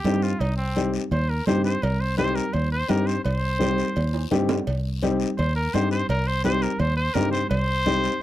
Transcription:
Already playing: trumpet G4
0.04 fingered electric bass G2, upright piano C4 D#4 G4, cowbell, high conga, low timbale, short guiro
0.22 trumpet F4, short guiro
0.40 fingered electric bass C2, trumpet D#4, cowbell, high conga, long guiro
0.57 trumpet C4
0.76 upright piano C4 D#4 G4, cowbell, high conga, short guiro
0.94 short guiro
1.11 fingered electric bass D#2, trumpet C5, cowbell, high conga, long guiro
1.29 trumpet A#4
1.46 fingered electric bass G2, upright piano C4 D#4 G4, trumpet C5, cowbell, high conga, low conga, short guiro
1.64 trumpet C5, short guiro
1.82 fingered electric bass C2, trumpet A#4, cowbell, high conga, long guiro
2.00 trumpet C5
2.17 upright piano C4 D#4 G4, trumpet C5, cowbell, high conga, short guiro
2.35 trumpet A#4, short guiro
2.53 fingered electric bass D#2, trumpet C5, cowbell, high conga, long guiro
2.72 trumpet C5
2.88 fingered electric bass G2, upright piano C4 D#4 G4, trumpet A#4, cowbell, high conga, low timbale, short guiro
3.06 trumpet C5, short guiro
3.24 fingered electric bass C2, trumpet C5, cowbell, high conga, long guiro
3.59 upright piano C4 D#4 G4, cowbell, high conga, short guiro
3.78 short guiro
3.96 fingered electric bass D#2, cowbell, high conga, long guiro
4.14 high timbale
4.31 fingered electric bass G2, upright piano C4 D#4 G4, cowbell, high conga, low conga, short guiro
4.49 low timbale, short guiro
4.67 fingered electric bass C2, cowbell, high conga, long guiro
5.02 upright piano C4 D#4 G4, cowbell, high conga, short guiro
5.20 short guiro
5.37 fingered electric bass D#2, trumpet C5, cowbell, high conga, long guiro
5.55 trumpet A#4
5.74 fingered electric bass G2, upright piano C4 D#4 G4, trumpet C5, cowbell, high conga, low timbale, short guiro
5.91 trumpet C5, short guiro
6.09 fingered electric bass C2, trumpet A#4, cowbell, high conga, long guiro
6.27 trumpet C5
6.44 upright piano C4 D#4 G4, trumpet C5, cowbell, high conga, short guiro
6.62 trumpet A#4, short guiro
6.79 fingered electric bass D#2, trumpet C5, cowbell, high conga, long guiro
6.97 trumpet C5
7.14 fingered electric bass G2, upright piano C4 D#4 G4, trumpet A#4, cowbell, high conga, low conga, low timbale, short guiro
7.32 trumpet C5, short guiro
7.50 fingered electric bass C2, trumpet C5, cowbell, high conga, long guiro
7.86 upright piano C4 D#4 G4, cowbell, high conga, short guiro
8.04 short guiro

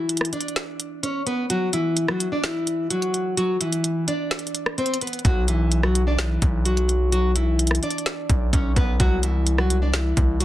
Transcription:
Already playing: nylon-string guitar E3 E4
0.09 closed hi-hat
0.17 cross-stick, closed hi-hat
0.25 closed hi-hat
0.33 nylon-string guitar D4 D5, closed hi-hat
0.41 closed hi-hat
0.48 closed hi-hat
0.56 snare, closed hi-hat
0.80 closed hi-hat
1.03 nylon-string guitar C#4 C#5, closed hi-hat
1.27 nylon-string guitar B3 B4, closed hi-hat
1.50 nylon-string guitar F#3 F#4, closed hi-hat
1.73 nylon-string guitar E3 E4, closed hi-hat
1.97 closed hi-hat
2.08 nylon-string guitar F#3 F#4, cross-stick
2.20 closed hi-hat
2.32 nylon-string guitar D4 D5
2.44 nylon-string guitar E3 E4, snare, closed hi-hat
2.67 closed hi-hat
2.90 nylon-string guitar F#3 F#4, closed hi-hat
3.02 closed hi-hat
3.14 closed hi-hat
3.37 nylon-string guitar F#3 F#4, closed hi-hat
3.61 nylon-string guitar E3 E4, closed hi-hat, open hi-hat
3.73 closed hi-hat
3.84 closed hi-hat
4.08 nylon-string guitar D4 D5, closed hi-hat
4.31 snare, closed hi-hat
4.39 closed hi-hat
4.47 closed hi-hat
4.55 closed hi-hat
4.66 cross-stick
4.78 nylon-string guitar C4 C5, closed hi-hat
4.86 closed hi-hat
4.94 closed hi-hat
5.01 nylon-string guitar B3 B4, closed hi-hat
5.07 closed hi-hat
5.13 closed hi-hat
5.19 closed hi-hat
5.25 808-style bass B1, nylon-string guitar F#3 F#4, kick, closed hi-hat
5.48 nylon-string guitar E3 E4, closed hi-hat
5.72 closed hi-hat
5.83 nylon-string guitar F#3 F#4, cross-stick
5.95 closed hi-hat
6.07 nylon-string guitar D4 D5
6.19 nylon-string guitar E3 E4, snare, closed hi-hat
6.42 808-style bass B1, kick, closed hi-hat
6.65 nylon-string guitar F#3 F#4, closed hi-hat
6.77 closed hi-hat
6.89 closed hi-hat
7.12 nylon-string guitar F#3 F#4, closed hi-hat
7.36 nylon-string guitar E3 E4, closed hi-hat
7.59 closed hi-hat
7.67 cross-stick, closed hi-hat
7.75 closed hi-hat
7.83 nylon-string guitar D4 D5, closed hi-hat
7.90 closed hi-hat
7.98 closed hi-hat
8.06 snare, closed hi-hat
8.30 808-style bass B1, kick, closed hi-hat
8.53 808-style bass B1, nylon-string guitar C#4 C#5, kick, closed hi-hat
8.76 808-style bass B1, nylon-string guitar B3 B4, kick, closed hi-hat
9.00 808-style bass C2, nylon-string guitar F#3 F#4, kick, closed hi-hat
9.23 nylon-string guitar E3 E4, closed hi-hat
9.47 closed hi-hat
9.58 nylon-string guitar F#3 F#4, cross-stick
9.70 closed hi-hat
9.82 nylon-string guitar D4 D5
9.94 nylon-string guitar E3 E4, snare, closed hi-hat
10.17 808-style bass C2, kick, closed hi-hat
10.40 nylon-string guitar F#3 F#4, closed hi-hat

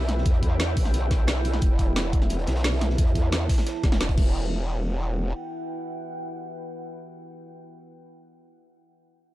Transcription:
Already playing: wobble bass B1, ambient pad E4 B4 E5 G5
0.09 snare, closed hi-hat
0.18 snare
0.26 wobble bass E2, kick, closed hi-hat
0.34 closed hi-hat
0.43 kick, closed hi-hat
0.60 snare, closed hi-hat
0.77 wobble bass B1, kick, closed hi-hat, open hi-hat
0.85 snare
0.94 closed hi-hat
1.11 kick, snare, closed hi-hat
1.27 snare, closed hi-hat
1.36 snare
1.45 closed hi-hat
1.53 snare
1.61 wobble bass E1, ambient pad A5, kick, closed hi-hat
1.79 kick, closed hi-hat
1.96 snare, closed hi-hat
2.13 kick, closed hi-hat
2.22 snare
2.30 closed hi-hat
2.39 closed hi-hat
2.47 wobble bass B1, snare, closed hi-hat
2.56 snare, closed hi-hat
2.64 snare, closed hi-hat
2.81 snare, closed hi-hat
2.90 snare
2.98 wobble bass E2, kick, closed hi-hat
3.07 closed hi-hat
3.15 kick, closed hi-hat
3.32 snare, closed hi-hat
3.49 kick, snare, closed hi-hat, open hi-hat
3.58 snare, closed hi-hat
3.67 snare, closed hi-hat
3.84 wobble bass E1, kick, snare, closed hi-hat
3.92 snare, closed hi-hat
4.01 snare, closed hi-hat
4.09 kick, closed hi-hat
4.18 wobble bass E1, ambient pad E4 B4 F#5 G5, kick, crash

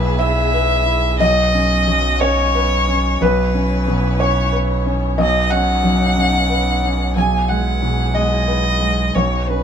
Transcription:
Already playing: felt piano B1 B2 E4 B4, sub bass B1, string section B3 G#4 E5, violin B4
0.19 felt piano E4 E5, violin E5
0.54 felt piano B4
0.86 felt piano E4
1.19 felt piano B1 D#5, string section F#4 C#5, violin D#5
1.54 felt piano C#4
1.88 felt piano F#2
2.20 felt piano C#4 C#5, violin C#5
2.55 felt piano B4
2.88 felt piano C#4
3.21 felt piano B1 B4, sub bass B1, string section B3 E4, violin B4
3.54 felt piano C#4
3.88 felt piano B2
4.20 felt piano C#4 C#5, violin C#5
4.53 felt piano B4
4.86 felt piano C#4
5.18 felt piano B1 D#5, string section D#4, violin D#5
5.50 felt piano C#4 F#5, violin F#5
5.83 felt piano F#2
6.16 felt piano C#4
6.50 felt piano B4
6.84 felt piano C#4
7.16 felt piano B1 G#5, string section E4 G#4, violin G#5
7.49 felt piano G#3 F#5, violin F#5
7.83 felt piano B2
8.14 felt piano G#3 D#5, violin D#5
8.48 felt piano B4
8.80 felt piano G#3
9.14 sub bass B1, felt piano B1 C#5, string section C#4 D#4 B4, violin C#5
9.48 felt piano C#4 B4, violin B4

